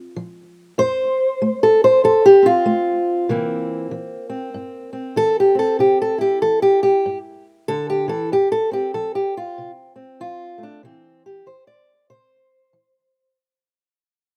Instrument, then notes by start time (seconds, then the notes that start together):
steel-string acoustic guitar
Already playing: C3
0.16 F3
0.78 F2 C5
1.42 A3
1.63 A4
1.84 C5
2.04 F2 A4
2.26 G4
2.42 C4 F4
2.65 A3
3.29 C3 E3 A#3 C4
3.91 E3
4.29 C4
4.54 G2
4.93 C4
5.16 E3 A4
5.40 G4
5.55 C4
5.59 A4
5.79 C3 G4
6.02 A4
6.18 E4 G4
6.42 E3 A4
6.62 G4
6.83 G4
7.06 G2
7.68 D3 A4
7.90 G4
8.08 E3 A4
8.32 F2 G4
8.52 A4
8.71 C4 G4
8.94 F3 A4
9.15 G4
9.37 F4
9.58 C3
9.96 C4
10.20 F3 F4
10.58 A3
10.63 D4
10.83 C3 E3 C4
11.26 G4
11.46 E3 C5
11.67 D5
12.10 C3 C5
12.73 E3